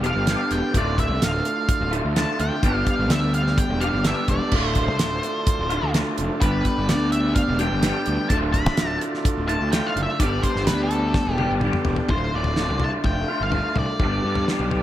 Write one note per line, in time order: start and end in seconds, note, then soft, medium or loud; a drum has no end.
0.00 0.11 E1 loud
0.00 0.73 B3 medium
0.00 4.49 D4 medium
0.00 0.30 D4 medium
0.00 0.73 G4 medium
0.00 0.26 G4 medium
0.00 8.28 A4 medium
0.00 closed hi-hat medium
0.04 0.26 G2 medium
0.04 0.27 D3 medium
0.04 0.27 G3 medium
0.04 0.26 B3 medium
0.04 0.54 F5 loud
0.16 0.35 G1 loud
0.27 0.73 G2 medium
0.27 0.74 D3 medium
0.27 0.74 G3 medium
0.27 0.74 B3 medium
0.27 2.65 D4 medium
0.27 snare loud
0.27 closed hi-hat loud
0.31 0.75 G4 medium
0.51 0.61 E1 medium
0.51 0.76 G5 medium
0.51 closed hi-hat medium
0.73 1.10 D1 loud
0.73 1.91 D2 medium
0.73 1.92 A2 medium
0.73 1.92 D3 loud
0.73 2.61 A3 medium
0.73 2.61 F4 medium
0.73 kick loud
0.73 closed hi-hat loud
0.77 1.91 A3 loud
0.77 1.90 F4 loud
0.77 1.00 D5 medium
0.98 1.21 E5 medium
0.98 kick medium
0.98 closed hi-hat medium
1.10 1.19 C2 medium
1.22 1.41 D1 medium
1.22 1.90 F5 medium
1.22 snare loud
1.22 closed hi-hat loud
1.45 closed hi-hat medium
1.69 kick loud
1.69 closed hi-hat loud
1.80 2.00 D1 medium
1.91 2.14 A2 medium
1.91 2.16 D3 medium
1.91 2.18 A3 medium
1.91 2.14 F4 medium
1.91 closed hi-hat medium
1.95 2.14 D2 medium
2.05 2.24 D2 medium
2.15 2.61 D2 medium
2.15 2.62 A2 medium
2.15 2.62 D3 medium
2.15 2.64 A3 medium
2.15 2.63 F4 medium
2.15 2.40 A5 loud
2.15 snare loud
2.15 closed hi-hat loud
2.40 2.50 D2 medium
2.40 2.84 G5 loud
2.40 closed hi-hat medium
2.62 2.83 G1 loud
2.62 3.80 G2 loud
2.62 3.80 D3 loud
2.62 3.81 G3 medium
2.62 4.51 B3 medium
2.62 3.81 B3 loud
2.62 3.81 D4 loud
2.62 4.51 G4 medium
2.62 3.80 G4 loud
2.62 kick loud
2.62 closed hi-hat medium
2.87 3.09 F5 loud
2.87 kick medium
2.87 closed hi-hat medium
2.99 3.10 G1 medium
3.10 3.58 D2 medium
3.10 3.34 E5 medium
3.10 snare loud
3.10 closed hi-hat loud
3.34 3.59 F5 medium
3.34 closed hi-hat medium
3.47 snare soft
3.58 3.83 G5 loud
3.58 kick loud
3.58 closed hi-hat loud
3.69 3.89 E1 loud
3.80 4.03 G2 medium
3.80 4.04 D3 medium
3.80 4.05 G3 medium
3.80 4.04 B3 medium
3.80 4.07 D4 medium
3.80 4.04 G4 medium
3.80 4.06 F5 loud
3.80 closed hi-hat medium
3.94 4.13 G1 medium
4.04 4.51 G2 medium
4.04 4.51 D3 medium
4.04 4.52 G3 medium
4.04 4.52 B3 medium
4.04 6.43 D4 medium
4.04 4.53 G4 medium
4.04 4.29 E5 loud
4.04 snare loud
4.04 closed hi-hat loud
4.28 4.38 E1 medium
4.28 4.78 D5 medium
4.28 kick medium
4.28 closed hi-hat medium
4.51 4.88 D1 medium
4.51 5.69 D2 medium
4.51 5.70 A2 medium
4.51 5.70 D3 loud
4.51 6.40 A3 medium
4.51 5.70 A3 loud
4.51 12.05 D4 medium
4.51 6.40 F4 medium
4.51 kick loud
4.51 crash loud
4.55 5.68 F4 loud
4.75 5.91 C5 medium
4.75 kick medium
4.75 closed hi-hat medium
4.88 4.98 C2 medium
4.99 5.19 D1 medium
4.99 snare loud
4.99 closed hi-hat loud
5.23 closed hi-hat medium
5.47 kick loud
5.47 closed hi-hat loud
5.59 5.78 D1 medium
5.69 5.92 D2 medium
5.69 5.93 A2 medium
5.69 5.93 D3 medium
5.69 5.95 A3 medium
5.69 5.92 F4 medium
5.69 closed hi-hat medium
5.83 6.02 D2 medium
5.93 6.39 D2 medium
5.93 6.40 A2 medium
5.93 6.40 D3 medium
5.93 6.42 A3 medium
5.93 6.41 F4 medium
5.93 snare loud
5.93 closed hi-hat loud
6.18 6.28 F1 medium
6.18 closed hi-hat medium
6.40 6.61 G1 loud
6.40 7.58 G2 medium
6.40 7.58 D3 medium
6.40 7.59 G3 medium
6.40 8.29 B3 medium
6.40 7.59 B3 loud
6.40 7.60 D4 loud
6.40 8.29 G4 medium
6.40 6.90 B4 medium
6.40 kick loud
6.40 closed hi-hat loud
6.44 7.58 G4 loud
6.65 kick medium
6.65 closed hi-hat medium
6.78 6.91 G1 medium
6.89 7.37 D2 medium
6.89 7.12 D5 medium
6.89 snare loud
6.89 closed hi-hat loud
7.12 7.35 E5 medium
7.12 closed hi-hat medium
7.35 7.60 F5 loud
7.35 kick loud
7.35 closed hi-hat loud
7.48 7.67 E1 loud
7.59 7.81 G2 medium
7.59 7.83 D3 medium
7.59 7.83 G3 medium
7.59 7.82 B3 medium
7.59 7.85 D4 medium
7.59 7.82 G4 medium
7.59 8.26 G5 loud
7.59 closed hi-hat medium
7.72 7.91 G1 loud
7.82 8.29 G2 medium
7.82 8.30 D3 medium
7.82 8.30 G3 medium
7.82 8.30 B3 medium
7.82 10.22 D4 medium
7.82 8.31 G4 medium
7.82 snare loud
7.82 closed hi-hat loud
8.06 8.17 D2 medium
8.06 closed hi-hat medium
8.29 8.66 D1 loud
8.29 9.47 D2 loud
8.29 9.47 A2 medium
8.29 9.48 D3 loud
8.29 10.18 A3 medium
8.29 9.49 A3 loud
8.29 10.18 F4 medium
8.29 12.06 A4 medium
8.29 8.36 A5 loud
8.29 kick loud
8.29 closed hi-hat loud
8.33 9.47 F4 loud
8.53 8.97 B5 loud
8.53 kick medium
8.53 closed hi-hat medium
8.66 8.76 C2 medium
8.66 snare soft
8.77 8.97 D1 medium
8.77 snare loud
8.77 closed hi-hat loud
9.01 closed hi-hat medium
9.14 snare soft
9.25 kick loud
9.25 closed hi-hat loud
9.37 9.56 D1 medium
9.48 9.71 D2 medium
9.48 9.72 A2 medium
9.48 9.72 D3 medium
9.48 9.75 A3 medium
9.48 9.71 F4 medium
9.48 9.72 A5 loud
9.48 closed hi-hat medium
9.61 9.80 D2 medium
9.72 10.18 D2 medium
9.72 10.19 A2 medium
9.72 10.19 D3 medium
9.72 10.22 A3 medium
9.72 9.89 G5 loud
9.72 snare loud
9.72 closed hi-hat loud
9.76 10.20 F4 medium
9.86 10.02 F5 loud
9.96 10.06 F#1 medium
9.96 closed hi-hat medium
10.03 10.20 E5 medium
10.20 10.39 G1 loud
10.20 11.37 G2 medium
10.20 11.37 D3 loud
10.20 11.38 G3 loud
10.20 12.08 B3 medium
10.20 11.38 B3 medium
10.20 11.37 D4 loud
10.20 12.08 G4 medium
10.20 11.36 G4 loud
10.20 10.44 D5 loud
10.20 kick loud
10.20 closed hi-hat loud
10.42 10.65 C5 medium
10.42 kick medium
10.42 closed hi-hat medium
10.56 10.69 G1 medium
10.56 snare soft
10.67 11.15 D2 medium
10.67 10.83 B4 medium
10.67 snare loud
10.67 closed hi-hat loud
10.83 11.33 A4 medium
10.91 closed hi-hat medium
11.14 kick loud
11.14 snare medium
11.27 11.46 E1 loud
11.33 11.50 G4 medium
11.37 11.60 G2 medium
11.37 11.61 D3 medium
11.37 11.61 G3 medium
11.37 11.61 B3 medium
11.37 11.61 D4 medium
11.37 11.60 G4 medium
11.37 high tom medium
11.51 11.70 G1 loud
11.61 12.08 G2 medium
11.61 12.08 D3 medium
11.61 12.09 G3 medium
11.61 12.09 B3 medium
11.61 12.09 D4 medium
11.61 12.10 G4 medium
11.61 mid tom medium
11.73 mid tom medium
11.85 11.96 E1 medium
11.85 floor tom loud
11.96 floor tom medium
12.09 12.29 D1 loud
12.09 12.55 D2 medium
12.09 12.56 A2 loud
12.09 12.36 D3 loud
12.09 12.34 A3 medium
12.09 12.34 C5 medium
12.09 kick loud
12.09 floor tom medium
12.13 12.32 F4 medium
12.34 12.70 D1 medium
12.34 12.57 D3 medium
12.34 12.58 A3 medium
12.34 12.58 F4 medium
12.34 12.83 D5 loud
12.44 floor tom medium
12.56 13.04 D2 medium
12.56 13.05 A2 medium
12.56 12.83 D3 medium
12.56 12.82 A3 medium
12.56 12.80 F4 loud
12.56 snare medium
12.70 12.89 C2 medium
12.80 13.29 A3 medium
12.80 13.27 F4 medium
12.80 floor tom medium
12.84 13.30 D3 medium
12.84 12.90 A5 loud
13.04 13.24 F1 medium
13.04 13.42 G5 loud
13.04 kick loud
13.04 floor tom medium
13.28 13.51 D3 medium
13.28 13.53 A3 medium
13.28 13.54 F4 medium
13.41 13.60 G1 medium
13.41 13.78 F5 medium
13.52 13.98 A2 medium
13.52 13.99 D3 medium
13.52 14.00 A3 medium
13.52 14.00 F4 medium
13.52 floor tom medium
13.76 13.86 C2 medium
13.76 14.45 D5 medium
13.76 floor tom medium
13.76 mid tom medium
14.00 14.19 G1 loud
14.00 14.46 G2 medium
14.00 14.47 D3 loud
14.00 14.25 G3 medium
14.00 14.24 B3 medium
14.00 14.23 D4 medium
14.00 kick loud
14.00 floor tom medium
14.04 14.21 G4 loud
14.22 14.43 G2 medium
14.22 14.48 G3 medium
14.22 14.48 B3 medium
14.22 14.49 D4 medium
14.22 14.50 G4 medium
14.35 floor tom medium
14.47 14.83 G2 medium
14.47 14.83 D3 medium
14.47 14.72 G3 loud
14.47 14.71 B3 medium
14.47 14.71 D4 loud
14.47 snare medium
14.51 14.69 G4 loud
14.60 14.83 B1 medium
14.70 14.83 G3 medium
14.70 14.83 B3 medium
14.70 14.83 D4 medium
14.70 14.83 G4 medium
14.70 floor tom medium